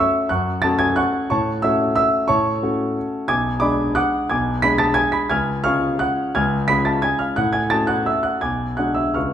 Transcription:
grand piano
Already playing: A3 C#4 F#4 E6
0.00 E5 C#6
0.29 F#2 F#5 C#6 F#6
0.62 A3 C#4 F#4 A5 A6
0.79 G#5 G#6
0.96 F#5 C#6 F#6
1.30 A2 C#5 A5 C#6
1.62 A3 C#4 F#4 E5 E6
1.96 E5 E6
2.28 A2 C#5 A5 C#6
2.63 A3 C#4 F#4
3.28 B1 G#5 D6 G#6
3.60 G#3 D4 G#4 D5 B5 D6
3.95 F#5 D6 F#6
4.30 B1 G#5 D6 G#6
4.62 G#3 D4 G#4 B5 B6
4.78 A5 A6
4.94 G#5 G#6
5.12 B5 B6
5.30 C#2 G#5 F6 G#6
5.64 G#3 C#4 F4 F5 C#6 F6
5.99 F#5 F#6
6.35 C#2 G#5 F6 G#6
6.68 G#3 C#4 F4 B5 B6
6.85 A5 A6
7.02 G#5 G#6
7.19 F5 F6
7.36 A2 F#5 F#6
7.53 G#5 G#6
7.70 A3 C#4 F#4 A5 A6
7.87 F#5 F#6
8.06 E5 E6
8.23 F#5 F#6
8.41 B1 G#5 D6 G#6
8.77 G#3 D4 F#4 F#5 F#6
8.95 E5 E6
9.14 C#2 G#3 C#4 B4 F5 C#6 F6

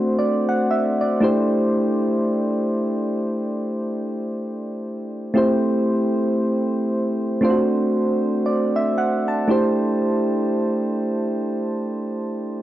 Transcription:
synth keys
Already playing: A3 C4 D4 F#4 C5
0.19 D5
0.49 F#5
0.71 E5
1.01 D5
1.20 A3 D4 E4 G4 C5
5.34 A3 C4 E4 G4 C5
7.41 A3 C4 D4 F4 C5
7.50 F#4
8.46 D5
8.76 E5
8.98 F#5
9.28 A5
9.48 A3 D4 E4 G4 C5

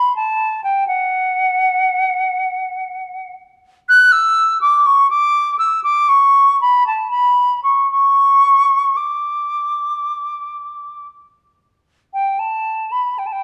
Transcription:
flute
Already playing: B5
0.16 A5
0.64 G5
0.87 F#5
3.89 F#6
4.12 E6
4.61 D6
4.86 C#6
5.10 D6
5.59 E6
5.84 D6
6.09 C#6
6.61 B5
6.87 A5
7.11 B5
7.63 C#6
7.91 C#6
8.97 D6
12.13 G5
12.39 A5
12.92 B5
13.18 G5
13.26 A5
13.32 G5

